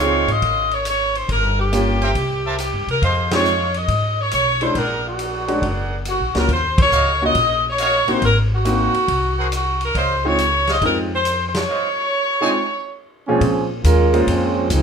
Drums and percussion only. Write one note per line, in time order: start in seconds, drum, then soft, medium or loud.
0.28 ride soft
0.42 kick soft
0.42 ride medium
0.71 ride soft
0.85 hi-hat pedal medium
0.85 ride medium
1.15 ride soft
1.29 kick soft
1.29 ride medium
1.73 hi-hat pedal medium
1.73 ride medium
2.02 ride soft
2.15 kick soft
2.15 ride medium
2.58 hi-hat pedal medium
2.58 ride medium
2.88 ride soft
3.02 kick soft
3.02 ride medium
3.31 snare medium
3.31 ride medium
3.45 hi-hat pedal soft
3.74 ride soft
3.88 kick soft
3.88 ride medium
4.31 hi-hat pedal soft
4.31 ride medium
4.61 ride soft
4.75 kick soft
4.75 ride medium
5.19 hi-hat pedal soft
5.19 ride medium
5.48 ride soft
5.62 kick soft
5.62 ride soft
6.05 hi-hat pedal soft
6.05 ride medium
6.35 snare medium
6.35 ride soft
6.49 kick soft
6.49 ride soft
6.78 kick medium
6.78 ride medium
6.91 hi-hat pedal soft
7.35 kick soft
7.35 ride medium
7.78 hi-hat pedal soft
7.78 ride medium
8.08 ride soft
8.22 kick soft
8.22 ride medium
8.65 hi-hat pedal medium
8.65 ride medium
8.94 ride soft
9.08 kick soft
9.08 ride medium
9.52 hi-hat pedal medium
9.52 ride medium
9.81 ride soft
9.95 kick soft
9.95 ride medium
10.38 hi-hat pedal soft
10.38 ride medium
10.67 snare soft
10.67 ride soft
10.82 kick soft
10.82 ride soft
11.25 hi-hat pedal medium
11.25 ride medium
11.54 snare medium
11.54 ride medium
13.41 kick soft
13.41 ride medium
13.84 kick soft
13.84 hi-hat pedal medium
13.84 ride medium
14.14 ride soft
14.27 kick soft
14.27 ride medium
14.70 kick soft
14.70 hi-hat pedal medium
14.70 ride medium